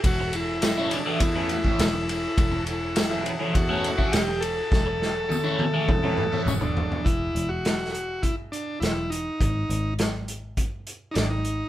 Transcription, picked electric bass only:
X:1
M:4/4
L:1/8
Q:1/4=103
K:Amix
V:1 name="Picked electric bass" clef=bass
E,,,4 E,,2 E,,,2 | E,,,4 E,,2 E,,,2 | E,,,4 E,,2 E,,,2 | E,,, E,,,4 z E,,,2 |
^G,,, G,,,4 z G,,,2 |]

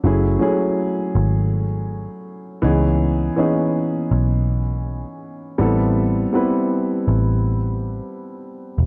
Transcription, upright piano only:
X:1
M:4/4
L:1/8
Q:"Swing 16ths" 1/4=81
K:F#dor
V:1 name="Upright piano"
[F,A,CEG] [F,A,CEG]3 z3 [E,B,CDG]- | [E,B,CDG] [E,B,CDG]3 z3 [=G,B,=CEA]- | [=G,B,=CEA] [G,B,CEB]3 z4 |]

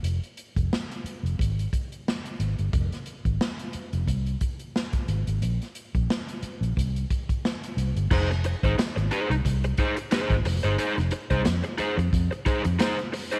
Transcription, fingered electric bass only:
X:1
M:4/4
L:1/16
Q:"Swing 16ths" 1/4=89
K:Fm
V:1 name="Fingered electric bass" clef=bass
F,,, z2 F,,, z3 F,,, A,,,2 z4 A,,, G,,, | F,,, z2 A,,, z3 F,,, C,,2 z4 A,,, A,,, | B,,, z2 B,,, z3 B,,, C,,2 z4 C,, G,,, | F,,,3 A,,, z A,,, z C,, C,,2 z3 A,,, F,,, G,,, |
z F,,, z C,, F,, z2 F,, F,, z2 F,, z4 |]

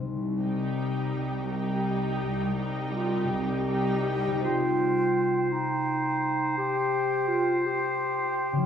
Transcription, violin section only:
X:1
M:6/8
L:1/8
Q:3/8=56
K:Cphr
V:1 name="Violin section"
z [Gg]3 [Gg]2- | [Gg] [Gg]3 [Gg]2 | z6 | z6 |]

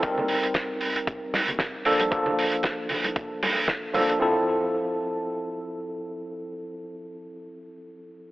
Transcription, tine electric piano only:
X:1
M:4/4
L:1/8
Q:"Swing 16ths" 1/4=115
K:F
V:1 name="Tine electric piano"
[G,C_EB]6- [G,CEB] [F,B,DA] | [F,B,DA]6- [F,B,DA] [F,B,DA] | [F,CEA]8- | [F,CEA]8 |]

